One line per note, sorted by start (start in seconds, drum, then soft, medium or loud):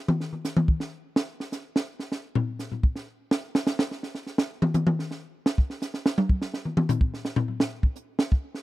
0.08 mid tom medium
0.21 snare soft
0.33 mid tom soft
0.45 snare soft
0.45 hi-hat pedal medium
0.57 mid tom medium
0.68 kick medium
0.80 snare soft
1.16 snare loud
1.40 snare soft
1.52 snare soft
1.52 hi-hat pedal medium
1.76 snare medium
2.00 snare soft
2.12 snare soft
2.35 floor tom medium
2.59 snare soft
2.59 hi-hat pedal medium
2.72 floor tom soft
2.83 kick medium
2.96 snare soft
3.31 snare medium
3.55 snare loud
3.67 snare medium
3.67 hi-hat pedal medium
3.79 snare medium
3.91 snare soft
4.03 snare soft
4.15 snare soft
4.27 snare soft
4.38 snare loud
4.62 mid tom loud
4.74 hi-hat pedal medium
4.74 mid tom medium
4.87 mid tom medium
4.99 snare soft
5.11 snare soft
5.46 snare medium
5.58 kick medium
5.70 snare soft
5.82 snare soft
5.82 hi-hat pedal medium
5.94 snare soft
6.06 snare loud
6.18 high tom loud
6.29 kick medium
6.42 snare medium
6.54 snare soft
6.65 mid tom soft
6.77 mid tom medium
6.89 floor tom loud
6.89 hi-hat pedal medium
7.01 kick medium
7.14 snare soft
7.25 snare medium
7.36 floor tom loud
7.48 floor tom soft
7.60 snare medium
7.83 kick medium
7.96 hi-hat pedal medium
8.19 snare medium
8.32 kick medium
8.55 snare soft